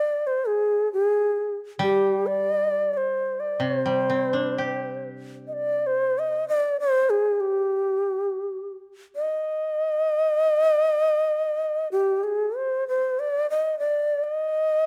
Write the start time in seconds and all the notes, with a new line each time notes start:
Already playing: D5
0.27 C5
0.47 G#4
0.93 G4
1.05 G#4
1.79 G3 G4
2.27 D5
2.93 C5 D5
3.40 D5
3.60 C3 C5
3.86 G3
4.10 C4
4.33 D4
4.58 G4
5.47 D#5
5.53 D5
5.87 C5
6.19 D#5
6.48 D5
6.80 C5
7.10 G#4
7.40 G4
9.16 D#5
11.92 G4
12.24 G#4
12.56 C5
12.88 C5
13.19 D5
13.50 D#5
13.79 D5
14.24 D#5